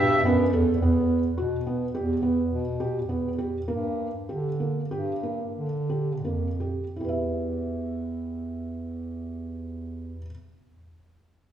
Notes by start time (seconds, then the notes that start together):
Already playing: G2 E3 G3 B3 G4 E5
0.25 F#2 B3
0.53 E2 A4
0.81 E2 B3
1.38 B2 F#4
1.67 B3
1.95 E2 G4
2.22 B3
2.51 B2
2.80 G4
3.09 E2 B3
3.38 G4
3.68 G2 A#3
4.28 D3 G4
4.60 A#3
4.90 G2 G4
5.23 A#3
5.56 D3
5.89 G4
6.23 F2 A#3
6.60 G4
6.96 E2 E4
7.01 G4 B4
7.08 E5